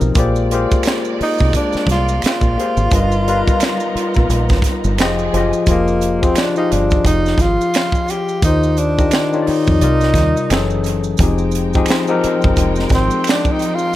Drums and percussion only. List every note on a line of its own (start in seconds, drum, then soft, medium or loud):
0.01 maracas soft
0.15 kick loud
0.15 closed hi-hat medium
0.15 maracas medium
0.36 maracas soft
0.51 closed hi-hat medium
0.71 kick medium
0.71 maracas soft
0.83 finger snap medium
0.83 closed hi-hat medium
0.83 maracas medium
0.87 finger snap medium
0.87 snare loud
1.05 maracas soft
1.21 open hi-hat medium
1.38 kick medium
1.38 maracas soft
1.53 kick medium
1.53 closed hi-hat medium
1.53 maracas medium
1.73 snare soft
1.73 maracas soft
1.87 kick medium
1.87 closed hi-hat medium
1.91 snare soft
2.09 maracas medium
2.22 finger snap medium
2.22 closed hi-hat medium
2.22 maracas medium
2.26 finger snap medium
2.26 snare loud
2.41 kick medium
2.41 maracas soft
2.59 closed hi-hat medium
2.77 maracas soft
2.91 kick loud
2.91 closed hi-hat medium
2.91 maracas medium
3.12 maracas soft
3.28 closed hi-hat medium
3.48 kick medium
3.48 maracas soft
3.60 finger snap medium
3.60 snare loud
3.60 closed hi-hat medium
3.60 maracas medium
3.64 finger snap medium
3.80 maracas soft
3.97 closed hi-hat medium
4.14 kick medium
4.14 maracas soft
4.30 closed hi-hat medium
4.30 maracas medium
4.49 kick medium
4.49 snare soft
4.49 maracas soft
4.62 kick medium
4.62 snare soft
4.62 closed hi-hat medium
4.84 maracas soft
4.98 finger snap medium
4.98 snare loud
4.98 closed hi-hat medium
4.98 maracas medium
5.02 finger snap medium
5.19 maracas soft
5.34 closed hi-hat medium
5.53 maracas soft
5.66 kick loud
5.66 closed hi-hat medium
5.66 maracas medium
5.88 maracas soft
6.01 closed hi-hat medium
6.01 maracas soft
6.23 kick medium
6.23 maracas soft
6.36 finger snap medium
6.36 snare loud
6.36 closed hi-hat medium
6.36 maracas medium
6.39 finger snap medium
6.56 maracas soft
6.72 closed hi-hat medium
6.90 kick medium
6.90 maracas soft
7.05 kick medium
7.05 closed hi-hat medium
7.05 maracas medium
7.26 snare soft
7.26 maracas soft
7.38 kick medium
7.38 snare soft
7.38 closed hi-hat medium
7.38 maracas soft
7.61 maracas medium
7.74 finger snap medium
7.74 snare loud
7.74 closed hi-hat medium
7.74 maracas medium
7.77 finger snap medium
7.92 kick medium
7.92 maracas soft
8.08 closed hi-hat medium
8.08 maracas soft
8.29 maracas soft
8.42 kick loud
8.42 closed hi-hat medium
8.42 maracas medium
8.63 maracas soft
8.77 closed hi-hat medium
8.77 maracas medium
8.99 kick medium
8.99 maracas soft
9.11 finger snap medium
9.11 snare loud
9.11 closed hi-hat medium
9.11 maracas medium
9.14 finger snap medium
9.33 maracas soft
9.47 open hi-hat medium
9.67 kick medium
9.67 maracas soft
9.81 closed hi-hat medium
9.81 maracas medium
10.01 snare soft
10.01 maracas soft
10.14 kick medium
10.14 snare soft
10.14 closed hi-hat medium
10.14 maracas soft
10.37 maracas soft
10.50 finger snap medium
10.50 snare loud
10.50 closed hi-hat medium
10.50 maracas medium
10.54 finger snap medium
10.70 maracas soft
10.84 closed hi-hat medium
10.84 maracas soft
11.04 maracas soft
11.17 kick loud
11.17 closed hi-hat medium
11.17 maracas medium
11.38 maracas soft
11.51 closed hi-hat medium
11.51 maracas medium
11.73 kick medium
11.73 maracas soft
11.86 finger snap medium
11.86 closed hi-hat medium
11.86 maracas medium
11.90 finger snap medium
11.90 snare loud
12.07 maracas soft
12.24 closed hi-hat medium
12.41 kick medium
12.41 maracas soft
12.56 kick medium
12.56 closed hi-hat medium
12.56 maracas medium
12.76 snare soft
12.76 maracas soft
12.89 kick medium
12.89 closed hi-hat medium
12.89 maracas medium
12.94 snare soft
13.11 maracas medium
13.24 finger snap medium
13.24 closed hi-hat medium
13.24 maracas medium
13.29 finger snap medium
13.29 snare loud
13.45 kick medium
13.45 maracas soft
13.59 closed hi-hat medium
13.59 maracas soft
13.79 maracas soft